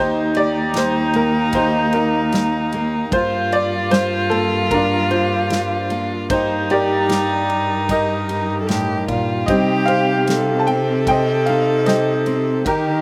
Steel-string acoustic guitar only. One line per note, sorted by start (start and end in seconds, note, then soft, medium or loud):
0.00 0.67 D#3 medium
0.00 1.94 D#4 medium
0.00 0.36 G4 medium
0.36 3.86 G4 medium
0.74 1.45 G3 medium
1.15 2.74 A#3 medium
1.55 2.26 A#2 medium
1.95 3.09 D#4 medium
2.34 3.05 G3 medium
2.74 4.31 A#3 medium
3.12 3.83 G2 medium
3.12 5.10 F4 medium
3.91 4.63 G3 medium
4.32 5.90 A#3 medium
4.72 5.43 D3 medium
5.11 6.25 F4 medium
5.50 6.22 G3 medium
5.91 7.49 A#3 medium
6.30 7.01 G2 medium
6.30 8.30 D#4 medium
6.71 9.51 G4 medium
7.09 7.80 G3 medium
7.89 8.60 G2 medium
8.30 9.50 D#4 medium
8.69 9.08 A2 medium
9.08 9.48 A#2 medium
9.49 10.20 C3 medium
9.49 10.27 G3 medium
9.49 10.67 C4 medium
9.49 11.48 D#4 medium
9.49 9.89 G4 medium
9.89 13.01 G4 medium
10.28 10.99 G3 medium
10.68 12.26 C4 medium
11.08 11.79 G2 medium
11.49 12.62 D#4 medium
11.86 12.58 G3 medium
12.27 12.61 C4 medium
12.65 13.01 D#3 medium
12.65 13.01 D#4 medium